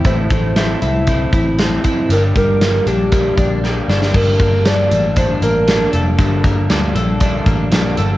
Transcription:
<<
  \new Staff \with { instrumentName = "Soft synth lead" } { \time 4/4 \key g \dorian \tempo 4 = 117 c''8 c''8 e''8 e''2 r8 | bes'8 bes'4 g'2 r8 | bes'4 d''4 c''8 bes'4 r8 | r1 | }
  \new Staff \with { instrumentName = "Clean electric guitar" } { \time 4/4 \key g \dorian a,8 a8 c'8 e'8 c'8 e'8 c'8 e'8 | g,8 g8 bes8 d'8 bes8 d'8 bes8 d'8 | g,8 bes8 d'4 d'8 bes8 d'8 a'8 | g,8 bes8 d'8 a'8 d'8 bes8 d'8 a'8 | }
  \new Staff \with { instrumentName = "Clean electric guitar" } { \time 4/4 \key g \dorian <a, e a c' e' a'>8 <a c' e' a'>8 <a c' e' a'>8 <a c' e' a'>8 <a, e a c' e' a'>8 <a c' e' a'>8 <a c' e' a'>8 <a c' e' a'>8 | <g, d g bes d' g'>8 <g bes d' g'>8 <g bes d' g'>8 <g bes d' g'>8 <g, d g bes d' g'>8 <g bes d' g'>8 <g bes d' g'>8 <g bes d' g'>8 | <g, d g bes d' a'>8 <g bes d' a'>8 <g bes d' a'>8 <g bes d' a'>8 <g, d g bes d' a'>8 <g bes d' a'>8 <g bes d' a'>8 <g bes d' a'>8 | <g, d g bes d' a'>8 <g bes d' a'>8 <g bes d' a'>8 <g bes d' a'>8 <g, d g bes d' a'>8 <g bes d' a'>8 <g bes d' a'>8 <g bes d' a'>8 | }
  \new Staff \with { instrumentName = "Picked electric bass" } { \clef bass \time 4/4 \key g \dorian a,,8 a,,4 c,4 a,,4 r8 | g,,8 g,,4 bes,,4 bes,,4 g,,8 | g,,4. a,,4 a,,4 f,,8 | g,,8 g,,8 d,8 bes,,4 a,,8 bes,,8 g,,8 | }
  \new DrumStaff \with { instrumentName = "Drums" } \drummode { \time 4/4 <hh bd>8 <hh bd>8 <hh sn>8 hh8 <hh bd>8 <hh bd>8 <hh sn>8 <hh bd>8 | hh8 <hh bd>8 <hh sn>8 hh8 <hh bd>8 <hh bd>8 sn8 sn16 sn16 | <cymc bd>8 <hh bd>8 <hh sn>8 hh8 <hh bd>8 hh8 <hh sn>8 hh8 | <hh bd>8 <hh bd>8 <hh sn>8 hh8 <hh bd>8 <hh bd>8 <hh sn>8 hh8 | }
>>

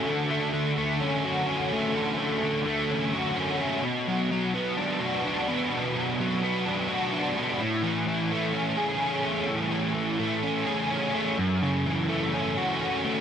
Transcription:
\new Staff \with { instrumentName = "Overdriven electric guitar" } { \time 4/4 \key a \major \tempo 4 = 127 d8 a8 d8 a8 cis'8 fis'8 cis'8 a8 | d8 a8 d8 a8 cis'8 fis'8 cis'8 a8 | b,8 fis8 fis8 b8 d'8 fis'8 d'8 b8 | b,8 fis8 fis8 b8 d'8 fis'8 d'8 b8 |
a,8 e8 e8 a8 cis'8 gis'8 cis'8 a8 | a,8 e8 e8 a8 cis'8 gis'8 cis'8 a8 | fis,8 cis8 e8 a8 cis'8 fis'8 cis'8 a8 | }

